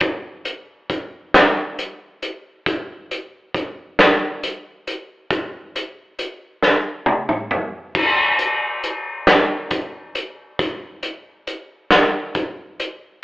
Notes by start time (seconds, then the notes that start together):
0.00 kick, closed hi-hat
0.45 closed hi-hat
0.90 kick, closed hi-hat
1.34 snare, closed hi-hat
1.79 closed hi-hat
2.22 closed hi-hat
2.66 kick, closed hi-hat
3.11 closed hi-hat
3.54 kick, closed hi-hat
3.99 snare, closed hi-hat
4.43 closed hi-hat
4.87 closed hi-hat
5.30 kick, closed hi-hat
5.76 closed hi-hat
6.19 closed hi-hat
6.62 snare
7.06 high tom
7.29 mid tom
7.51 mid tom
7.95 kick, crash
8.39 closed hi-hat
8.83 closed hi-hat
9.27 snare, closed hi-hat
9.71 kick, closed hi-hat
10.15 closed hi-hat
10.59 kick, closed hi-hat
11.03 closed hi-hat
11.47 closed hi-hat
11.91 snare, closed hi-hat
12.35 kick, closed hi-hat
12.80 closed hi-hat